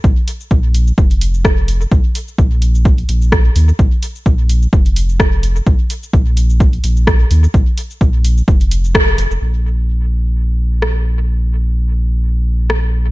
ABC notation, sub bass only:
X:1
M:4/4
L:1/16
Q:"Swing 16ths" 1/4=128
K:Cphr
V:1 name="Sub bass" clef=bass
B,,, z3 B,,,3 z F,,,6- F,,, z | B,,, z3 B,,,4- B,,, z B,,,3 z E,, z | B,,, z3 B,,,3 z F,,,6- F,,, z | B,,, z3 B,,,4- B,,, z B,,,3 z E,, z |
B,,, z3 B,,,3 z F,,,6 F,,, F,,, | B,,,16- | B,,,16 |]